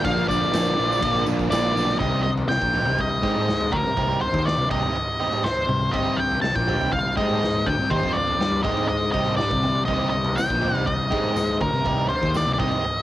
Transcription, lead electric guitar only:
0.05 0.27 F5 loud
0.28 1.23 D5 medium
1.51 1.99 D5 loud
1.99 2.22 D#5 loud
2.23 2.30 D#5 medium
2.49 3.00 G5 medium
3.00 3.76 D#5 medium
3.73 4.21 A#4 medium
4.21 4.47 C5 medium
4.45 4.69 D5 medium
4.71 5.47 D#5 medium
5.44 5.95 C5 loud
5.92 6.18 D#5 loud
6.17 6.41 G5 medium
6.42 6.55 A5 loud
6.55 6.92 G5 loud
6.93 7.15 F5 loud
7.17 7.68 D#5 medium
7.66 7.92 G5 medium
7.90 8.16 C5 loud
8.13 8.60 D5 medium
8.63 8.87 D#5 medium
8.88 9.11 D#5 medium
9.12 9.36 D#5 medium
9.37 9.85 D5 medium
9.85 10.09 D#5 loud
10.10 10.37 D#5 medium
10.35 10.87 G5 medium
10.86 11.56 D#5 loud
11.61 12.07 A#4 medium
12.09 12.35 C5 medium
12.37 12.52 D5 medium
12.53 12.59 D5 medium
12.60 13.02 D#5 medium

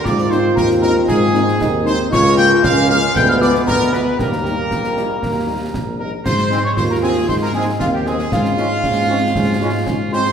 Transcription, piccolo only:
0.05 0.11 D6 loud
0.30 0.36 C6 medium
0.55 0.61 A#5 medium
0.81 1.06 A#5 medium
1.08 1.82 G#5 medium
1.86 1.92 C6 loud
2.13 2.36 C#6 loud
2.38 2.66 G6 loud
2.65 2.90 F6 loud
2.90 2.96 F6 loud
3.16 3.30 G6 loud
3.29 3.43 F6 loud
3.41 3.66 D6 loud
3.67 3.94 A#5 loud
3.93 4.19 B5 medium
4.18 5.98 A#5 medium
5.99 6.23 A#5 medium
6.25 6.61 C6 medium
6.64 6.70 C#6 medium
6.76 6.82 C6 medium
6.90 6.96 A#5 medium
7.03 7.09 G#5 medium
7.28 7.34 C6 medium
7.42 7.48 A#5 medium
7.54 7.78 G#5 medium
7.80 7.92 F5 medium
7.93 7.99 G5 medium
8.07 8.13 G#5 medium
8.32 9.90 F5 medium
10.12 10.32 C6 medium

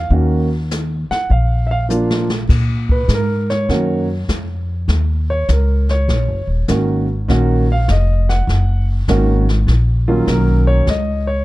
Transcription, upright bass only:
0.10 1.06 D#2 medium
1.10 muted upright bass stroke soft
1.30 2.45 A#1 medium
2.49 3.07 A#2 medium
3.08 3.67 G#2 medium
3.69 4.27 F#2 medium
4.29 4.87 F2 medium
4.88 5.46 D#2 medium
5.49 6.07 C#2 medium
6.08 6.28 A#1 medium
6.28 6.47 F#1 medium
6.47 6.66 D#1 medium
6.68 7.26 G#1 medium
7.28 7.86 A#1 medium
7.88 8.46 F1 medium
8.47 9.06 F#1 medium
9.08 9.66 G#1 medium
9.67 10.25 A#1 medium
10.27 10.86 B1 medium
10.86 11.45 C#2 medium

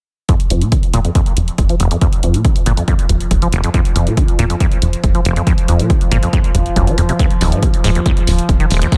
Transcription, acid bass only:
0.29 0.35 F2 medium
0.50 0.63 F2 medium
0.61 0.73 A#2 medium
0.72 0.78 D#3 loud
0.94 1.00 A#2 loud
1.05 1.10 F2 medium
1.15 1.21 F2 loud
1.69 1.75 F3 medium
1.80 1.89 F1 loud
1.91 1.97 F2 medium
2.01 2.08 F2 loud
2.23 2.36 F2 medium
2.34 2.46 A#2 medium
2.45 2.51 D#3 loud
2.66 2.72 A#2 loud
2.77 2.83 F2 medium
2.88 2.94 F2 loud
3.42 3.48 F3 medium
3.53 3.62 F1 loud
3.64 3.69 F2 medium
3.74 3.80 F2 loud
3.96 4.08 F2 medium
4.07 4.19 A#2 medium
4.17 4.23 D#3 loud
4.39 4.45 A#2 loud
4.50 4.56 F2 medium
4.60 4.67 F2 loud
5.15 5.21 F3 medium
5.25 5.34 F1 loud
5.36 5.42 F2 medium
5.47 5.53 F2 loud
5.68 5.81 F2 medium
5.79 5.91 A#2 medium
5.90 5.96 D#3 loud
6.12 6.18 A#2 loud
6.23 6.28 F2 medium
6.33 6.39 F2 loud
6.76 6.89 F#2 medium
6.87 6.96 F3 loud
6.98 7.02 F2 medium
7.09 7.12 C3 medium
7.20 7.26 D#2 loud
7.41 7.54 D#2 medium
7.52 7.64 G#2 medium
7.63 7.69 C#3 loud
7.84 7.90 G#2 loud
7.95 8.01 D#2 medium
8.06 8.12 D#2 loud
8.60 8.66 D#3 medium
8.70 8.80 D#1 loud
8.82 8.87 D#2 medium
8.92 8.97 D#2 loud

